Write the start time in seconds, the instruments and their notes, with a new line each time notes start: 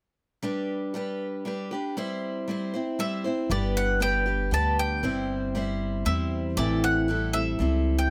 0.43 steel-string acoustic guitar G3 D4 G4 B4
0.94 steel-string acoustic guitar G3 D4 G4 B4
1.45 steel-string acoustic guitar G3 D4 G4 B4
1.71 steel-string acoustic guitar D4 G4 B4
1.97 steel-string acoustic guitar G3 C4 E4 C5
2.48 steel-string acoustic guitar G3 C4 E4 C5
2.74 steel-string acoustic guitar C4 E4 C5
2.99 steel-string acoustic guitar G3 C4 E4 C5, mandolin E5
3.24 steel-string acoustic guitar C4 E4 C5
3.50 upright bass G1, steel-string acoustic guitar G3 B3 D4 G4 B4, mandolin D5
3.77 mandolin F#5
4.00 steel-string acoustic guitar B3 D4 G4 B4, mandolin G5
4.26 steel-string acoustic guitar D4 G4 B4
4.51 upright bass D2, steel-string acoustic guitar B3 D4 G4 B4, mandolin A5
4.79 mandolin G5
5.03 upright bass G1, steel-string acoustic guitar G3 C4 E4 C5
5.55 steel-string acoustic guitar G3 C4 E4 C5
6.05 upright bass E2, steel-string acoustic guitar G3 C4 E4 C5, mandolin E5
6.57 upright bass A1, steel-string acoustic guitar A2 E3 G3 C4 E4 A4, mandolin D5
6.84 mandolin F#5
7.08 steel-string acoustic guitar G3 C4 E4 A4
7.33 steel-string acoustic guitar G3 C4 E4 A4, mandolin E5
7.59 upright bass C#2, steel-string acoustic guitar G3 C4 E4 A4
7.99 mandolin G5